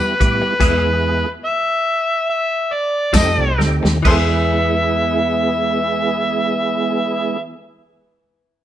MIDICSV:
0, 0, Header, 1, 7, 480
1, 0, Start_track
1, 0, Tempo, 806452
1, 361, Time_signature, 4, 2, 24, 8
1, 847, Tempo, 859599
1, 1807, Tempo, 934579
1, 4631, End_track
2, 0, Start_track
2, 0, Title_t, "Harmonica"
2, 0, Program_c, 0, 22
2, 0, Note_on_c, 0, 71, 111
2, 763, Note_off_c, 0, 71, 0
2, 863, Note_on_c, 0, 76, 109
2, 1312, Note_off_c, 0, 76, 0
2, 1336, Note_on_c, 0, 76, 88
2, 1576, Note_on_c, 0, 74, 77
2, 1585, Note_off_c, 0, 76, 0
2, 1807, Note_off_c, 0, 74, 0
2, 1821, Note_on_c, 0, 75, 91
2, 2039, Note_off_c, 0, 75, 0
2, 2281, Note_on_c, 0, 69, 60
2, 2281, Note_on_c, 0, 72, 60
2, 2281, Note_on_c, 0, 76, 85
2, 2313, Note_off_c, 0, 72, 0
2, 2321, Note_off_c, 0, 69, 0
2, 3989, Note_off_c, 0, 76, 0
2, 4631, End_track
3, 0, Start_track
3, 0, Title_t, "Tonewheel organ"
3, 0, Program_c, 1, 16
3, 0, Note_on_c, 1, 55, 81
3, 0, Note_on_c, 1, 59, 68
3, 0, Note_on_c, 1, 64, 72
3, 0, Note_on_c, 1, 67, 79
3, 85, Note_off_c, 1, 59, 0
3, 85, Note_off_c, 1, 64, 0
3, 86, Note_off_c, 1, 55, 0
3, 86, Note_off_c, 1, 67, 0
3, 118, Note_on_c, 1, 59, 81
3, 119, Note_on_c, 1, 64, 72
3, 120, Note_on_c, 1, 55, 87
3, 121, Note_on_c, 1, 67, 88
3, 321, Note_off_c, 1, 59, 0
3, 322, Note_off_c, 1, 55, 0
3, 322, Note_off_c, 1, 64, 0
3, 323, Note_off_c, 1, 67, 0
3, 358, Note_on_c, 1, 56, 81
3, 359, Note_on_c, 1, 59, 80
3, 360, Note_on_c, 1, 64, 82
3, 360, Note_on_c, 1, 68, 93
3, 754, Note_off_c, 1, 56, 0
3, 755, Note_off_c, 1, 59, 0
3, 755, Note_off_c, 1, 64, 0
3, 755, Note_off_c, 1, 68, 0
3, 1801, Note_on_c, 1, 60, 69
3, 1802, Note_on_c, 1, 57, 73
3, 1803, Note_on_c, 1, 63, 74
3, 1803, Note_on_c, 1, 67, 83
3, 2000, Note_off_c, 1, 57, 0
3, 2000, Note_off_c, 1, 60, 0
3, 2001, Note_off_c, 1, 63, 0
3, 2001, Note_off_c, 1, 67, 0
3, 2033, Note_on_c, 1, 57, 86
3, 2033, Note_on_c, 1, 60, 69
3, 2033, Note_on_c, 1, 63, 75
3, 2034, Note_on_c, 1, 67, 80
3, 2236, Note_off_c, 1, 60, 0
3, 2236, Note_off_c, 1, 63, 0
3, 2237, Note_off_c, 1, 57, 0
3, 2237, Note_off_c, 1, 67, 0
3, 2270, Note_on_c, 1, 59, 77
3, 2271, Note_on_c, 1, 56, 80
3, 2271, Note_on_c, 1, 68, 87
3, 2272, Note_on_c, 1, 64, 75
3, 3979, Note_off_c, 1, 56, 0
3, 3979, Note_off_c, 1, 59, 0
3, 3980, Note_off_c, 1, 64, 0
3, 3980, Note_off_c, 1, 68, 0
3, 4631, End_track
4, 0, Start_track
4, 0, Title_t, "Clean electric guitar"
4, 0, Program_c, 2, 27
4, 356, Note_on_c, 2, 52, 85
4, 361, Note_on_c, 2, 56, 94
4, 362, Note_on_c, 2, 59, 93
4, 364, Note_on_c, 2, 64, 88
4, 510, Note_off_c, 2, 52, 0
4, 513, Note_off_c, 2, 56, 0
4, 513, Note_off_c, 2, 59, 0
4, 514, Note_off_c, 2, 64, 0
4, 1800, Note_on_c, 2, 53, 72
4, 1805, Note_on_c, 2, 60, 82
4, 1807, Note_on_c, 2, 63, 81
4, 1809, Note_on_c, 2, 69, 87
4, 1949, Note_off_c, 2, 53, 0
4, 1952, Note_off_c, 2, 60, 0
4, 1953, Note_off_c, 2, 63, 0
4, 1954, Note_off_c, 2, 69, 0
4, 2261, Note_on_c, 2, 52, 73
4, 2276, Note_on_c, 2, 59, 82
4, 2288, Note_on_c, 2, 64, 77
4, 2300, Note_on_c, 2, 68, 83
4, 4059, Note_off_c, 2, 52, 0
4, 4074, Note_off_c, 2, 59, 0
4, 4086, Note_off_c, 2, 64, 0
4, 4098, Note_off_c, 2, 68, 0
4, 4631, End_track
5, 0, Start_track
5, 0, Title_t, "Fingered electric bass"
5, 0, Program_c, 3, 33
5, 122, Note_on_c, 3, 45, 84
5, 243, Note_off_c, 3, 45, 0
5, 360, Note_on_c, 3, 40, 88
5, 733, Note_off_c, 3, 40, 0
5, 1803, Note_on_c, 3, 41, 92
5, 1922, Note_off_c, 3, 41, 0
5, 1928, Note_on_c, 3, 36, 86
5, 2026, Note_off_c, 3, 36, 0
5, 2037, Note_on_c, 3, 38, 75
5, 2152, Note_off_c, 3, 38, 0
5, 2167, Note_on_c, 3, 39, 81
5, 2266, Note_off_c, 3, 39, 0
5, 2273, Note_on_c, 3, 40, 82
5, 3982, Note_off_c, 3, 40, 0
5, 4631, End_track
6, 0, Start_track
6, 0, Title_t, "Muted clean electric guitar strokes"
6, 121, Note_on_c, 9, 29, 42
6, 180, Note_off_c, 9, 29, 0
6, 248, Note_on_c, 9, 29, 56
6, 308, Note_off_c, 9, 29, 0
6, 2035, Note_on_c, 9, 29, 38
6, 2086, Note_off_c, 9, 29, 0
6, 2159, Note_on_c, 9, 29, 50
6, 2211, Note_off_c, 9, 29, 0
6, 4631, End_track
7, 0, Start_track
7, 0, Title_t, "Drums"
7, 123, Note_on_c, 9, 36, 85
7, 123, Note_on_c, 9, 42, 62
7, 183, Note_off_c, 9, 36, 0
7, 183, Note_off_c, 9, 42, 0
7, 360, Note_on_c, 9, 36, 96
7, 362, Note_on_c, 9, 42, 86
7, 362, Note_on_c, 9, 49, 68
7, 420, Note_off_c, 9, 36, 0
7, 421, Note_off_c, 9, 42, 0
7, 421, Note_off_c, 9, 49, 0
7, 1804, Note_on_c, 9, 36, 78
7, 1804, Note_on_c, 9, 42, 74
7, 1804, Note_on_c, 9, 54, 101
7, 1811, Note_on_c, 9, 38, 108
7, 1855, Note_off_c, 9, 42, 0
7, 1855, Note_off_c, 9, 54, 0
7, 1856, Note_off_c, 9, 36, 0
7, 1862, Note_off_c, 9, 38, 0
7, 2043, Note_on_c, 9, 38, 61
7, 2094, Note_off_c, 9, 38, 0
7, 2170, Note_on_c, 9, 38, 77
7, 2222, Note_off_c, 9, 38, 0
7, 2273, Note_on_c, 9, 49, 86
7, 2274, Note_on_c, 9, 36, 93
7, 2325, Note_off_c, 9, 36, 0
7, 2325, Note_off_c, 9, 49, 0
7, 4631, End_track
0, 0, End_of_file